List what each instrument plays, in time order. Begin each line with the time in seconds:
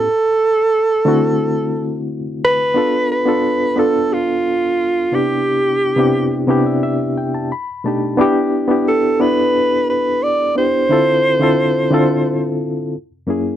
Already playing: alto saxophone A4
1.05 reed electric piano D3 A3 C4 E4 F#4
2.45 alto saxophone B4
2.74 reed electric piano B3 D4 F4 A4
3.12 alto saxophone B4
3.25 reed electric piano B3 D4 F4 A4
3.76 reed electric piano B3 D4 F4 A4, alto saxophone A4
4.13 alto saxophone F4
5.12 reed electric piano C3 B3 D4 E4 G4, alto saxophone G4
5.96 reed electric piano C3 B3 D4 E4 G4
6.47 reed electric piano C3 B3 D4 E4 G4 D5
6.66 reed electric piano E5
6.83 reed electric piano E5
7.18 reed electric piano G5
7.34 reed electric piano A5
7.52 reed electric piano B5
7.84 reed electric piano B2 A3 D4 D#4 G4 A5
8.17 reed electric piano B3 D4 E4 G4
8.68 reed electric piano B3 D4 E4 G4
8.88 alto saxophone A4
9.20 reed electric piano B3 D4 E4 A4, alto saxophone B4
9.90 alto saxophone B4
10.23 alto saxophone D5
10.55 reed electric piano B3 D4 E4 G4, alto saxophone C5
10.89 reed electric piano D3 C4 E4 F4 A4
11.40 reed electric piano D3 C4 E4 F4 A4
11.91 reed electric piano D3 C4 E4 F4 A4
13.27 reed electric piano F#2 A#3 C#4 E4 G#4